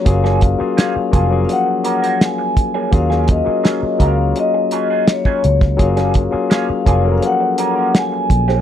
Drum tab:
HH |x-x-x-x-x-xxx-x-|x-x-x-x-x-x-x-x-|xxx-x-x-x-x-x-x-|
SD |-o--o-------o---|-o--o-------o--o|-o--o-------o--o|
BD |o-o---o-------o-|o-o---o------o-o|o-o---o-------o-|